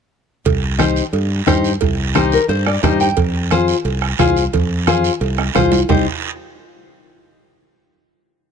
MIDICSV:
0, 0, Header, 1, 5, 480
1, 0, Start_track
1, 0, Key_signature, -3, "minor"
1, 0, Tempo, 339751
1, 650, Time_signature, 4, 2, 24, 8
1, 12030, End_track
2, 0, Start_track
2, 0, Title_t, "Nylon-string guitar"
2, 0, Program_c, 0, 24
2, 1108, Note_on_c, 0, 63, 88
2, 1116, Note_on_c, 0, 67, 75
2, 1120, Note_on_c, 0, 72, 91
2, 1456, Note_off_c, 0, 63, 0
2, 1457, Note_off_c, 0, 67, 0
2, 1461, Note_off_c, 0, 72, 0
2, 2071, Note_on_c, 0, 63, 83
2, 2077, Note_on_c, 0, 67, 79
2, 2087, Note_on_c, 0, 72, 92
2, 2417, Note_off_c, 0, 63, 0
2, 2420, Note_off_c, 0, 67, 0
2, 2422, Note_off_c, 0, 72, 0
2, 3036, Note_on_c, 0, 63, 86
2, 3041, Note_on_c, 0, 67, 74
2, 3047, Note_on_c, 0, 72, 95
2, 3296, Note_on_c, 0, 70, 69
2, 3378, Note_off_c, 0, 63, 0
2, 3381, Note_off_c, 0, 67, 0
2, 3383, Note_off_c, 0, 72, 0
2, 3512, Note_off_c, 0, 70, 0
2, 3518, Note_on_c, 0, 72, 80
2, 3746, Note_off_c, 0, 72, 0
2, 3771, Note_on_c, 0, 74, 80
2, 3993, Note_off_c, 0, 74, 0
2, 4003, Note_on_c, 0, 63, 80
2, 4005, Note_on_c, 0, 67, 81
2, 4011, Note_on_c, 0, 72, 99
2, 4013, Note_on_c, 0, 75, 72
2, 4231, Note_off_c, 0, 75, 0
2, 4247, Note_on_c, 0, 79, 76
2, 4341, Note_off_c, 0, 67, 0
2, 4343, Note_off_c, 0, 63, 0
2, 4345, Note_off_c, 0, 72, 0
2, 4471, Note_off_c, 0, 79, 0
2, 4964, Note_on_c, 0, 65, 83
2, 4969, Note_on_c, 0, 68, 77
2, 4971, Note_on_c, 0, 72, 95
2, 5302, Note_off_c, 0, 65, 0
2, 5303, Note_off_c, 0, 72, 0
2, 5304, Note_off_c, 0, 68, 0
2, 5919, Note_on_c, 0, 65, 82
2, 5927, Note_on_c, 0, 68, 81
2, 5930, Note_on_c, 0, 72, 95
2, 6260, Note_off_c, 0, 65, 0
2, 6261, Note_off_c, 0, 72, 0
2, 6262, Note_off_c, 0, 68, 0
2, 6883, Note_on_c, 0, 65, 82
2, 6889, Note_on_c, 0, 68, 71
2, 6893, Note_on_c, 0, 72, 91
2, 7221, Note_off_c, 0, 65, 0
2, 7222, Note_off_c, 0, 68, 0
2, 7225, Note_off_c, 0, 72, 0
2, 7841, Note_on_c, 0, 65, 85
2, 7847, Note_on_c, 0, 68, 82
2, 7850, Note_on_c, 0, 72, 100
2, 8180, Note_off_c, 0, 65, 0
2, 8181, Note_off_c, 0, 68, 0
2, 8184, Note_off_c, 0, 72, 0
2, 8325, Note_on_c, 0, 67, 71
2, 8333, Note_on_c, 0, 72, 94
2, 8334, Note_on_c, 0, 63, 83
2, 8550, Note_off_c, 0, 67, 0
2, 8551, Note_off_c, 0, 72, 0
2, 8554, Note_off_c, 0, 63, 0
2, 12030, End_track
3, 0, Start_track
3, 0, Title_t, "Fingered electric bass"
3, 0, Program_c, 1, 33
3, 647, Note_on_c, 1, 36, 101
3, 1416, Note_off_c, 1, 36, 0
3, 1592, Note_on_c, 1, 43, 88
3, 1983, Note_off_c, 1, 43, 0
3, 2087, Note_on_c, 1, 43, 95
3, 2472, Note_off_c, 1, 43, 0
3, 2570, Note_on_c, 1, 36, 114
3, 3337, Note_off_c, 1, 36, 0
3, 3508, Note_on_c, 1, 43, 97
3, 3900, Note_off_c, 1, 43, 0
3, 4004, Note_on_c, 1, 43, 101
3, 4389, Note_off_c, 1, 43, 0
3, 4481, Note_on_c, 1, 41, 109
3, 5251, Note_off_c, 1, 41, 0
3, 5432, Note_on_c, 1, 36, 92
3, 5822, Note_off_c, 1, 36, 0
3, 5924, Note_on_c, 1, 36, 111
3, 6308, Note_off_c, 1, 36, 0
3, 6412, Note_on_c, 1, 41, 108
3, 7178, Note_off_c, 1, 41, 0
3, 7358, Note_on_c, 1, 36, 103
3, 7745, Note_off_c, 1, 36, 0
3, 7848, Note_on_c, 1, 36, 103
3, 8231, Note_off_c, 1, 36, 0
3, 8331, Note_on_c, 1, 36, 93
3, 8552, Note_off_c, 1, 36, 0
3, 12030, End_track
4, 0, Start_track
4, 0, Title_t, "Two-headed folk drums"
4, 651, Note_on_c, 9, 36, 82
4, 792, Note_off_c, 9, 36, 0
4, 1122, Note_on_c, 9, 37, 77
4, 1263, Note_off_c, 9, 37, 0
4, 2085, Note_on_c, 9, 37, 82
4, 2088, Note_on_c, 9, 36, 81
4, 2227, Note_off_c, 9, 37, 0
4, 2229, Note_off_c, 9, 36, 0
4, 2569, Note_on_c, 9, 36, 87
4, 2710, Note_off_c, 9, 36, 0
4, 3045, Note_on_c, 9, 37, 83
4, 3186, Note_off_c, 9, 37, 0
4, 3765, Note_on_c, 9, 37, 73
4, 3906, Note_off_c, 9, 37, 0
4, 4006, Note_on_c, 9, 36, 74
4, 4013, Note_on_c, 9, 37, 79
4, 4148, Note_off_c, 9, 36, 0
4, 4154, Note_off_c, 9, 37, 0
4, 4483, Note_on_c, 9, 36, 84
4, 4625, Note_off_c, 9, 36, 0
4, 4960, Note_on_c, 9, 37, 79
4, 5101, Note_off_c, 9, 37, 0
4, 5679, Note_on_c, 9, 37, 75
4, 5820, Note_off_c, 9, 37, 0
4, 5925, Note_on_c, 9, 37, 73
4, 5929, Note_on_c, 9, 36, 82
4, 6066, Note_off_c, 9, 37, 0
4, 6070, Note_off_c, 9, 36, 0
4, 6410, Note_on_c, 9, 36, 82
4, 6552, Note_off_c, 9, 36, 0
4, 6883, Note_on_c, 9, 37, 90
4, 7024, Note_off_c, 9, 37, 0
4, 7606, Note_on_c, 9, 37, 71
4, 7747, Note_off_c, 9, 37, 0
4, 7849, Note_on_c, 9, 37, 81
4, 7851, Note_on_c, 9, 36, 73
4, 7990, Note_off_c, 9, 37, 0
4, 7992, Note_off_c, 9, 36, 0
4, 8333, Note_on_c, 9, 36, 92
4, 8474, Note_off_c, 9, 36, 0
4, 12030, End_track
5, 0, Start_track
5, 0, Title_t, "Drums"
5, 639, Note_on_c, 9, 74, 70
5, 648, Note_on_c, 9, 56, 110
5, 664, Note_on_c, 9, 63, 38
5, 781, Note_off_c, 9, 74, 0
5, 790, Note_off_c, 9, 56, 0
5, 805, Note_off_c, 9, 63, 0
5, 1125, Note_on_c, 9, 63, 84
5, 1127, Note_on_c, 9, 73, 67
5, 1266, Note_off_c, 9, 63, 0
5, 1268, Note_off_c, 9, 73, 0
5, 1360, Note_on_c, 9, 73, 66
5, 1502, Note_off_c, 9, 73, 0
5, 1601, Note_on_c, 9, 56, 85
5, 1605, Note_on_c, 9, 63, 33
5, 1605, Note_on_c, 9, 74, 67
5, 1743, Note_off_c, 9, 56, 0
5, 1746, Note_off_c, 9, 63, 0
5, 1747, Note_off_c, 9, 74, 0
5, 2071, Note_on_c, 9, 63, 79
5, 2081, Note_on_c, 9, 66, 74
5, 2088, Note_on_c, 9, 73, 66
5, 2212, Note_off_c, 9, 63, 0
5, 2222, Note_off_c, 9, 66, 0
5, 2230, Note_off_c, 9, 73, 0
5, 2323, Note_on_c, 9, 73, 65
5, 2464, Note_off_c, 9, 73, 0
5, 2554, Note_on_c, 9, 56, 98
5, 2566, Note_on_c, 9, 74, 69
5, 2567, Note_on_c, 9, 63, 36
5, 2695, Note_off_c, 9, 56, 0
5, 2707, Note_off_c, 9, 74, 0
5, 2708, Note_off_c, 9, 63, 0
5, 3039, Note_on_c, 9, 63, 91
5, 3041, Note_on_c, 9, 73, 65
5, 3180, Note_off_c, 9, 63, 0
5, 3182, Note_off_c, 9, 73, 0
5, 3281, Note_on_c, 9, 73, 66
5, 3422, Note_off_c, 9, 73, 0
5, 3518, Note_on_c, 9, 74, 73
5, 3520, Note_on_c, 9, 63, 34
5, 3522, Note_on_c, 9, 56, 89
5, 3660, Note_off_c, 9, 74, 0
5, 3661, Note_off_c, 9, 63, 0
5, 3663, Note_off_c, 9, 56, 0
5, 3997, Note_on_c, 9, 66, 74
5, 3999, Note_on_c, 9, 73, 67
5, 4003, Note_on_c, 9, 63, 86
5, 4003, Note_on_c, 9, 64, 82
5, 4139, Note_off_c, 9, 66, 0
5, 4141, Note_off_c, 9, 73, 0
5, 4144, Note_off_c, 9, 63, 0
5, 4144, Note_off_c, 9, 64, 0
5, 4241, Note_on_c, 9, 73, 71
5, 4382, Note_off_c, 9, 73, 0
5, 4475, Note_on_c, 9, 56, 105
5, 4478, Note_on_c, 9, 63, 41
5, 4479, Note_on_c, 9, 74, 69
5, 4616, Note_off_c, 9, 56, 0
5, 4619, Note_off_c, 9, 63, 0
5, 4621, Note_off_c, 9, 74, 0
5, 4961, Note_on_c, 9, 73, 69
5, 4966, Note_on_c, 9, 63, 92
5, 5102, Note_off_c, 9, 73, 0
5, 5107, Note_off_c, 9, 63, 0
5, 5200, Note_on_c, 9, 73, 70
5, 5342, Note_off_c, 9, 73, 0
5, 5440, Note_on_c, 9, 56, 82
5, 5445, Note_on_c, 9, 63, 36
5, 5447, Note_on_c, 9, 74, 75
5, 5581, Note_off_c, 9, 56, 0
5, 5587, Note_off_c, 9, 63, 0
5, 5588, Note_off_c, 9, 74, 0
5, 5918, Note_on_c, 9, 63, 82
5, 5919, Note_on_c, 9, 73, 71
5, 5923, Note_on_c, 9, 66, 70
5, 6060, Note_off_c, 9, 63, 0
5, 6061, Note_off_c, 9, 73, 0
5, 6064, Note_off_c, 9, 66, 0
5, 6168, Note_on_c, 9, 73, 71
5, 6309, Note_off_c, 9, 73, 0
5, 6404, Note_on_c, 9, 74, 67
5, 6408, Note_on_c, 9, 56, 99
5, 6413, Note_on_c, 9, 63, 38
5, 6546, Note_off_c, 9, 74, 0
5, 6549, Note_off_c, 9, 56, 0
5, 6554, Note_off_c, 9, 63, 0
5, 6884, Note_on_c, 9, 63, 92
5, 6888, Note_on_c, 9, 73, 66
5, 7026, Note_off_c, 9, 63, 0
5, 7029, Note_off_c, 9, 73, 0
5, 7124, Note_on_c, 9, 73, 74
5, 7266, Note_off_c, 9, 73, 0
5, 7362, Note_on_c, 9, 56, 82
5, 7364, Note_on_c, 9, 74, 68
5, 7372, Note_on_c, 9, 63, 34
5, 7504, Note_off_c, 9, 56, 0
5, 7505, Note_off_c, 9, 74, 0
5, 7514, Note_off_c, 9, 63, 0
5, 7605, Note_on_c, 9, 65, 70
5, 7746, Note_off_c, 9, 65, 0
5, 7838, Note_on_c, 9, 66, 78
5, 7849, Note_on_c, 9, 73, 70
5, 7857, Note_on_c, 9, 63, 82
5, 7857, Note_on_c, 9, 64, 85
5, 7979, Note_off_c, 9, 66, 0
5, 7990, Note_off_c, 9, 73, 0
5, 7999, Note_off_c, 9, 63, 0
5, 7999, Note_off_c, 9, 64, 0
5, 8077, Note_on_c, 9, 66, 71
5, 8093, Note_on_c, 9, 73, 67
5, 8218, Note_off_c, 9, 66, 0
5, 8234, Note_off_c, 9, 73, 0
5, 8321, Note_on_c, 9, 66, 90
5, 8329, Note_on_c, 9, 64, 112
5, 8333, Note_on_c, 9, 74, 96
5, 8462, Note_off_c, 9, 66, 0
5, 8470, Note_off_c, 9, 64, 0
5, 8474, Note_off_c, 9, 74, 0
5, 12030, End_track
0, 0, End_of_file